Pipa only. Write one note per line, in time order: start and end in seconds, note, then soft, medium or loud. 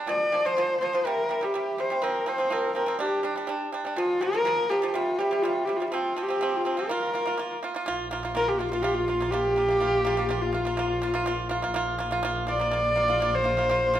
0.07 0.27 A#2 medium
0.07 0.28 F3 medium
0.32 0.42 A#2 medium
0.32 0.43 F3 medium
0.45 0.55 A#2 medium
0.45 0.55 F3 medium
0.57 0.76 A#2 medium
0.57 0.77 F3 medium
0.81 0.91 A#2 medium
0.81 0.92 F3 medium
0.93 1.03 A#2 medium
0.93 1.04 F3 medium
1.05 1.25 C3 medium
1.05 1.26 G3 medium
1.29 1.39 C3 medium
1.29 1.40 G3 medium
1.41 1.51 C3 medium
1.41 1.52 G3 medium
1.54 1.74 C3 medium
1.54 1.74 G3 medium
1.78 1.88 C3 medium
1.78 1.89 G3 medium
1.90 2.00 C3 medium
1.90 2.01 G3 medium
2.02 2.22 F3 medium
2.02 2.23 C4 medium
2.26 2.37 F3 medium
2.26 2.37 C4 medium
2.38 2.49 F3 medium
2.38 2.49 C4 medium
2.50 2.71 F3 medium
2.50 2.71 C4 medium
2.75 2.85 F3 medium
2.75 2.86 C4 medium
2.86 2.97 F3 medium
2.86 2.98 C4 medium
2.99 3.19 G3 medium
2.99 3.20 D4 medium
3.23 3.34 G3 medium
3.23 3.34 D4 medium
3.36 3.46 G3 medium
3.36 3.47 D4 medium
3.47 3.68 G3 medium
3.47 3.68 D4 medium
3.72 3.83 G3 medium
3.72 3.83 D4 medium
3.85 3.95 G3 medium
3.85 3.96 D4 medium
3.96 4.17 A#2 medium
3.96 4.17 F3 medium
4.21 4.31 A#2 medium
4.21 4.32 F3 medium
4.33 4.43 A#2 medium
4.33 4.44 F3 medium
4.45 4.65 A#2 medium
4.45 4.66 F3 medium
4.69 4.80 A#2 medium
4.69 4.81 F3 medium
4.82 4.92 A#2 medium
4.82 4.93 F3 medium
4.94 5.14 C3 medium
4.94 5.15 G3 medium
5.19 5.29 C3 medium
5.19 5.30 G3 medium
5.31 5.41 C3 medium
5.31 5.42 G3 medium
5.43 5.63 C3 medium
5.43 5.64 G3 medium
5.67 5.77 C3 medium
5.67 5.78 G3 medium
5.80 5.90 C3 medium
5.80 5.91 G3 medium
5.92 6.12 F3 medium
5.92 6.12 C4 medium
6.16 6.26 F3 medium
6.16 6.27 C4 medium
6.29 6.38 F3 medium
6.29 6.39 C4 medium
6.41 6.60 F3 medium
6.41 6.61 C4 medium
6.65 6.75 F3 medium
6.65 6.76 C4 medium
6.77 6.87 F3 medium
6.77 6.88 C4 medium
6.89 7.09 A#3 medium
6.89 7.10 F4 medium
7.13 7.24 A#3 medium
7.13 7.24 F4 medium
7.26 7.36 A#3 medium
7.26 7.36 F4 medium
7.38 7.57 A#3 medium
7.38 7.58 F4 medium
7.63 7.72 A#3 medium
7.63 7.73 F4 medium
7.74 7.84 A#3 medium
7.74 7.85 F4 medium
7.86 8.06 A#3 medium
7.86 8.07 F4 loud
8.11 8.21 A#3 medium
8.11 8.22 F4 medium
8.23 8.33 A#3 medium
8.23 8.34 F4 medium
8.35 8.55 A#3 medium
8.35 8.56 F4 medium
8.59 8.69 A#3 medium
8.59 8.70 F4 medium
8.72 8.82 A#3 medium
8.72 8.82 F4 medium
8.83 9.03 A#3 medium
8.83 9.04 F4 medium
9.08 9.18 A#3 medium
9.08 9.19 F4 medium
9.20 9.30 A#3 medium
9.20 9.31 F4 medium
9.32 9.52 A#3 medium
9.32 9.53 F4 medium
9.56 9.66 A#3 medium
9.56 9.67 F4 medium
9.69 9.79 A#3 medium
9.69 9.80 F4 medium
9.80 10.00 A#3 medium
9.80 10.01 F4 medium
10.05 10.15 A#3 medium
10.05 10.16 F4 loud
10.17 10.27 A#3 medium
10.17 10.28 F4 medium
10.29 10.49 A#3 medium
10.29 10.50 F4 loud
10.53 10.63 A#3 medium
10.53 10.64 F4 medium
10.65 10.76 A#3 medium
10.65 10.76 F4 medium
10.77 10.97 A#3 medium
10.77 10.98 F4 loud
11.02 11.12 A#3 medium
11.02 11.13 F4 medium
11.14 11.24 A#3 medium
11.14 11.25 F4 medium
11.26 11.46 A#3 medium
11.26 11.47 F4 loud
11.49 11.60 A#3 medium
11.49 11.61 F4 medium
11.62 11.73 A#3 medium
11.62 11.73 F4 medium
11.74 11.94 A#3 medium
11.74 11.95 F4 loud
11.98 12.09 A#3 medium
11.98 12.10 F4 medium
12.11 12.21 A#3 medium
12.11 12.22 F4 medium
12.23 12.43 A#3 loud
12.23 12.44 F4 loud
12.47 12.58 A#3 medium
12.47 12.58 F4 medium
12.60 12.70 A#3 medium
12.60 12.71 F4 medium
12.71 12.92 A#3 medium
12.71 12.93 F4 medium
12.96 13.06 A#3 medium
12.96 13.07 F4 medium
13.08 13.19 A#3 medium
13.08 13.19 F4 medium
13.20 13.41 A#3 medium
13.20 13.41 F4 medium
13.44 13.55 A#3 medium
13.44 13.55 F4 medium
13.57 13.67 A#3 medium
13.57 13.68 F4 medium
13.69 13.89 A#3 medium
13.69 13.90 F4 medium
13.94 14.00 A#3 medium
13.94 14.00 F4 medium